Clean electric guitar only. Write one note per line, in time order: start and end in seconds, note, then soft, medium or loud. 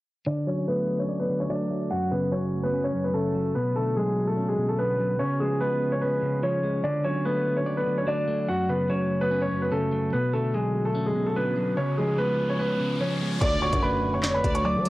0.26 1.28 D3 medium
0.47 1.48 F#3 medium
0.68 1.69 A3 medium
1.09 1.91 D5 medium
1.29 1.91 D3 medium
1.49 1.91 F#3 medium
1.70 1.91 A3 medium
1.91 2.93 F#2 medium
2.12 3.13 C#3 medium
2.32 3.34 F#3 medium
2.73 3.55 C#4 medium
2.94 3.55 F#2 medium
3.14 3.55 C#3 medium
3.35 3.55 F#3 medium
3.56 4.57 B2 medium
3.76 4.78 D3 medium
3.97 4.98 F#3 medium
4.37 5.19 C#4 medium
4.58 5.20 B2 medium
4.79 5.20 D3 medium
4.99 5.19 F#3 medium
5.20 6.21 C#3 medium
5.41 6.42 F3 medium
5.60 6.62 G#3 medium
6.02 6.84 C#4 medium
6.22 6.83 C#3 medium
6.43 6.84 F3 medium
6.63 6.84 G#3 medium
6.84 7.85 D3 loud
7.04 8.06 F#3 medium
7.25 8.26 A3 medium
7.66 8.48 D5 medium
7.87 8.48 D3 medium
8.07 8.48 F#3 medium
8.28 8.48 A3 medium
8.48 9.50 F#2 medium
8.69 9.70 C#3 medium
8.90 9.91 F#3 medium
9.31 10.13 C#4 medium
9.51 10.13 F#2 medium
9.72 10.13 C#3 medium
9.92 10.13 F#3 medium
10.13 11.14 B2 medium
10.33 11.35 D3 medium
10.54 11.55 F#3 medium
10.95 11.77 C#4 medium
11.15 11.77 B2 medium
11.36 11.77 D3 medium
11.57 11.77 F#3 medium
11.77 12.78 C#3 medium
11.98 12.99 F3 medium
12.18 13.20 G#3 medium
12.59 13.41 C#4 medium
12.80 13.41 C#3 medium
13.00 13.41 F3 medium
13.21 13.41 G#3 medium
13.41 14.43 D3 loud
13.62 14.65 F#4 medium
13.83 14.84 A3 medium
14.24 14.89 D5 loud
14.44 14.89 D3 medium
14.64 14.89 F#3 medium
14.85 14.89 A3 medium